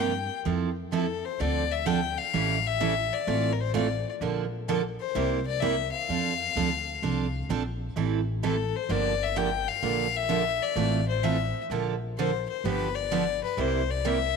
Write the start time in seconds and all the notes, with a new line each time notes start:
Already playing: G2
0.00 C3 F3 A#3 F4 G4 G5
0.45 F2 F3 C4 E4 A4
0.92 F3 C4 E4 A4
1.25 C5
1.40 D2 D3 F3 C4 D4 A4 D5
1.71 E5
1.86 D3 F3 C4 D4 A4 G5
2.18 F5
2.33 A1 E3 G3 C#4 E4 A4
2.67 E5
2.81 E3 G3 C#4 E4 A4
3.13 D5
3.27 A1 E3 A3 C4 F4 A4
3.53 A#4
3.60 C5
3.74 E3 A3 C4 F4 A4 D5
4.21 A#1 D3 F3 A#3 D4 A4
4.68 D3 F3 A#3 D4 A4
5.00 C5
5.15 C2 C3 G3 A#3 E4 G4
5.47 D5
5.60 C3 G3 A#3 E4 G4 E5
5.92 F5
6.09 F2 F3 C4 D4 A4
6.56 D2 F3 C4 D4 A4
7.02 C2 F3 C4 D4 A4
7.49 A#1 F3 C4 D4 A4
7.96 A1 E3 G3 C4 E4 A4
8.43 E3 G3 C4 E4 A4
8.76 C5
8.89 G1 D3 F3 A#3 D4 G4 D5
9.23 E5
9.36 D3 F3 A#3 D4 G4 G5
9.68 F5
9.82 A#1 D3 F3 A#3 D4 A4
10.16 E5
10.29 D3 F3 A#3 D4 A4
10.62 D5
10.76 A1 E3 A3 C4 F4 A4
11.08 C5
11.23 E3 A3 C4 F4 A4 E5
11.70 A#1 D3 F3 A#3 D4 A4
12.18 D3 F3 A#3 D4 A4 C5
12.49 C5
12.64 G1 D3 F3 B3 D4 G4 B4
12.95 D5
13.11 D3 F3 B3 D4 G4
13.44 B4
13.57 C2 C3 G3 A#3 E4 G4 C5
13.90 D5
14.05 C3 G3 A#3 E4 G4 E5